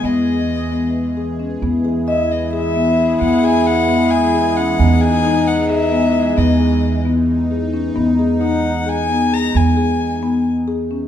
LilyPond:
<<
  \new Staff \with { instrumentName = "Violin" } { \time 7/8 \key e \major \tempo 4 = 132 dis''2~ dis''8 r4 | r4 e''8 dis''8 e''4. | fis''8 gis''8 fis''4 gis''4 fis''8~ | fis''8 gis''4 fis''8 e''4. |
dis''4. r2 | r4 fis''4 gis''4 ais''8 | gis''2 r4. | }
  \new Staff \with { instrumentName = "French horn" } { \time 7/8 \key e \major r2. r8 | e'2.~ e'8~ | e'2.~ e'8 | dis'2.~ dis'8~ |
dis'2. r8 | dis'2.~ dis'8 | r2. r8 | }
  \new Staff \with { instrumentName = "Marimba" } { \time 7/8 \key e \major b8 gis'4 b4 gis'8 cis'8 | b8 gis'8 dis''4 gis'8 b8 gis'8 | b8 gis'4 b4 gis'8 cis'8 | b8 gis'8 dis'4 gis'8 b8 gis'8 |
b8 gis'4 b4 gis'8 cis'8 | b8 gis'8 dis'4 gis'8 b8 gis'8 | b8 gis'4 b4 gis'8 cis'8 | }
  \new Staff \with { instrumentName = "Ambient pad" } { \clef bass \time 7/8 \key e \major << { gis'2.~ gis'8 | gis'2.~ gis'8~ | gis'2.~ gis'8~ | gis'2.~ gis'8 |
dis'2.~ dis'8~ | dis'2.~ dis'8~ | dis'2.~ dis'8 | } \\ { <e gis>2.~ <e gis>8 | <e gis>2.~ <e gis>8~ | <e gis>2.~ <e gis>8~ | <e gis>2.~ <e gis>8~ |
<e gis>2.~ <e gis>8~ | <e gis>2.~ <e gis>8~ | <e gis>2.~ <e gis>8 | } >> }
  \new Staff \with { instrumentName = "Upright bass" } { \clef bass \time 7/8 \key e \major e,2.~ e,8 | e,2.~ e,8 | e,2.~ e,8 | e,2.~ e,8 |
e,2.~ e,8 | e,2.~ e,8 | e,2.~ e,8 | }
>>